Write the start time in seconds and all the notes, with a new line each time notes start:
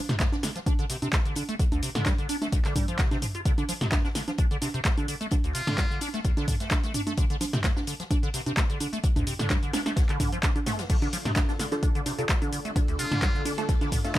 0.09 C3, snare, closed hi-hat, mid tom, cabasa
0.20 A3, kick, snare, clap, closed hi-hat, cabasa
0.32 D4, snare, high conga, cabasa
0.43 D3, snare, closed hi-hat, open hi-hat, cabasa
0.56 F3, snare, closed hi-hat, cabasa
0.66 D4, kick, closed hi-hat, high conga, cabasa
0.79 D3, closed hi-hat, cabasa
0.89 C3, snare, closed hi-hat, open hi-hat, cabasa
1.02 C3, closed hi-hat, high conga, cabasa
1.13 A3, kick, snare, clap, closed hi-hat, cabasa
1.25 D3, closed hi-hat, cabasa
1.35 D3, closed hi-hat, open hi-hat, high conga, cabasa
1.49 A3, closed hi-hat, cabasa
1.59 D3, kick, closed hi-hat, cabasa
1.72 D2, closed hi-hat, high conga, cabasa
1.82 C3, closed hi-hat, open hi-hat, cabasa
1.95 D3, snare, closed hi-hat, mid tom, cabasa
2.05 G3, kick, snare, clap, closed hi-hat, high conga, cabasa
2.18 D3, closed hi-hat, cabasa
2.29 D4, closed hi-hat, open hi-hat, cabasa
2.42 A3, snare, closed hi-hat, high conga, cabasa
2.52 D2, kick, closed hi-hat, cabasa
2.64 D3, snare, clap, closed hi-hat, cabasa
2.76 G3, kick, mid tom, open hi-hat, high conga, cabasa
2.88 F3, closed hi-hat, cabasa
2.98 C3, kick, snare, clap, closed hi-hat, cabasa
3.11 C3, snare, closed hi-hat, high conga, cabasa
3.22 F3, closed hi-hat, mid tom, open hi-hat, cabasa
3.35 F4, closed hi-hat, cabasa
3.45 D3, kick, closed hi-hat, cabasa
3.58 D3, closed hi-hat, high conga, cabasa
3.69 F3, closed hi-hat, open hi-hat, cabasa
3.81 C3, snare, closed hi-hat, mid tom, cabasa
3.92 A3, kick, snare, clap, closed hi-hat, high conga, cabasa
4.05 D4, snare, cabasa
4.15 D3, snare, closed hi-hat, open hi-hat, cabasa
4.28 F3, snare, closed hi-hat, high conga, cabasa
4.38 D4, kick, closed hi-hat, cabasa
4.51 D3, closed hi-hat, cabasa
4.61 C3, snare, closed hi-hat, open hi-hat, high conga, cabasa
4.74 C3, closed hi-hat, cabasa
4.85 A3, kick, snare, clap, closed hi-hat, cabasa
4.97 D3, closed hi-hat, high conga, cabasa
5.08 D3, closed hi-hat, open hi-hat, cabasa
5.21 A3, closed hi-hat, cabasa
5.31 D3, kick, closed hi-hat, high conga, cabasa
5.44 D2, closed hi-hat, cabasa
5.55 C3 F4, closed hi-hat, open hi-hat, cabasa
5.67 D3, snare, closed hi-hat, mid tom, high conga, cabasa
5.78 G3, kick, snare, clap, closed hi-hat, cabasa
5.91 D3, cabasa
6.01 D4, closed hi-hat, open hi-hat, high conga, cabasa
6.13 A3, snare, closed hi-hat, cabasa
6.24 D2, kick, closed hi-hat, cabasa
6.37 D3, snare, closed hi-hat, high conga, cabasa
6.48 D3, kick, closed hi-hat, mid tom, open hi-hat, cabasa
6.60 A3, snare, closed hi-hat, cabasa
6.70 A3, kick, snare, clap, closed hi-hat, high conga, cabasa
6.83 A3, snare, closed hi-hat, cabasa
6.94 D4, closed hi-hat, mid tom, open hi-hat, cabasa
7.07 A3, closed hi-hat, high conga, cabasa
7.17 D3, kick, closed hi-hat, cabasa
7.30 D3, closed hi-hat, cabasa
7.41 F3, closed hi-hat, open hi-hat, high conga, cabasa
7.53 C3, snare, closed hi-hat, mid tom, cabasa
7.64 A3, kick, snare, clap, closed hi-hat, cabasa
7.76 D4, snare, high conga, cabasa
7.87 D3, closed hi-hat, open hi-hat, cabasa
8.00 F3, snare, closed hi-hat, cabasa
8.11 D4, kick, closed hi-hat, high conga, cabasa
8.23 D3, closed hi-hat, cabasa
8.34 C3, snare, closed hi-hat, open hi-hat, cabasa
8.46 C3, closed hi-hat, high conga, cabasa
8.57 A3, kick, snare, clap, closed hi-hat, cabasa
8.70 D3, closed hi-hat, cabasa
8.80 D3, closed hi-hat, open hi-hat, high conga, cabasa
8.93 A3, closed hi-hat, cabasa
9.03 D3, kick, closed hi-hat, cabasa
9.16 D2, closed hi-hat, mid tom, high conga, cabasa
9.27 C3, closed hi-hat, open hi-hat, cabasa
9.39 D3, snare, closed hi-hat, mid tom, cabasa
9.50 G3, kick, snare, clap, closed hi-hat, high conga, cabasa
9.63 D3, closed hi-hat, cabasa
9.73 D4, snare, closed hi-hat, open hi-hat, cabasa
9.85 A3, snare, closed hi-hat, high conga, cabasa
9.96 D2, kick, snare, closed hi-hat, cabasa
10.09 D3, clap, closed hi-hat, cabasa
10.20 D3, kick, snare, closed hi-hat, mid tom, open hi-hat, high conga, cabasa
10.32 F3, closed hi-hat, cabasa
10.43 D4, kick, snare, clap, closed hi-hat, cabasa
10.56 D3, closed hi-hat, high conga, cabasa
10.66 A3, snare, closed hi-hat, mid tom, open hi-hat, cabasa
10.79 D3, snare, closed hi-hat, cabasa
10.90 D3 D4 F4 A4, kick, closed hi-hat, crash, cabasa
11.02 D3, closed hi-hat, high conga, cabasa
11.13 F3, closed hi-hat, open hi-hat, cabasa
11.25 C3, snare, closed hi-hat, mid tom, cabasa
11.35 A3, kick, snare, clap, closed hi-hat, high conga, cabasa
11.48 D4, snare, cabasa
11.59 D3, snare, closed hi-hat, open hi-hat, cabasa
11.72 F3 D4 F4 A4, snare, closed hi-hat, high conga, cabasa
11.83 D4, kick, closed hi-hat, cabasa
11.95 D3, closed hi-hat, cabasa
12.06 C3, snare, closed hi-hat, open hi-hat, high conga, cabasa
12.18 C3 D4 F4 A4, closed hi-hat, cabasa
12.29 A3, kick, snare, clap, closed hi-hat, cabasa
12.42 D3, closed hi-hat, high conga, cabasa
12.53 D3, closed hi-hat, open hi-hat, cabasa
12.65 A3, closed hi-hat, cabasa
12.76 D3, kick, closed hi-hat, high conga, cabasa
12.88 D2, closed hi-hat, cabasa
12.99 C3 F4, closed hi-hat, open hi-hat, cabasa
13.11 D3, snare, closed hi-hat, mid tom, high conga, cabasa
13.22 G3, kick, snare, clap, closed hi-hat, cabasa
13.35 D3, cabasa
13.45 D4, closed hi-hat, open hi-hat, high conga, cabasa
13.58 A3 D4 F4 A4, snare, closed hi-hat, cabasa
13.69 D2, kick, closed hi-hat, cabasa
13.81 D3, snare, closed hi-hat, high conga, cabasa
13.92 D3, kick, closed hi-hat, mid tom, open hi-hat, cabasa
14.04 A3 D4 F4 A4, snare, closed hi-hat, cabasa
14.15 A3, kick, snare, clap, closed hi-hat, high conga